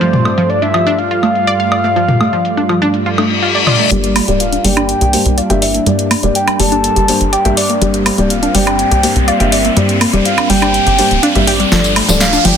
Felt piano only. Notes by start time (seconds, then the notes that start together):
3.91 G2 A#3 G4 D5
4.28 G2 A#3 G4 D5
4.64 G2 A#3 G4 D5
5.13 G2 A#3 G4 C5
5.50 G2 A#3 G4 E5
5.86 G2 A#3 G4 D5
6.23 G2 A#3 G4 D5
6.59 G2 A#3 G4 D5
7.08 G2 A#3 G4 C5
7.45 G2 A#3 G4 E5
7.81 G2 A#3 G4 D5
8.18 G2 A#3 G4 D5
8.55 G2 A#3 G4 D5
9.03 G2 A#3 G4 C5
9.40 G2 A#3 G4 E5
9.77 G2 A#3 G4 D5
10.13 G2 A#3 G4 D5
10.50 G2 A#3 G4 D5
10.99 G2 A#3 G4 C5
11.35 G2 A#3 G4 E5
11.72 G2 A3 F4 D5
12.08 G2 A3 F4 D5
12.45 G2 A3 F4 D5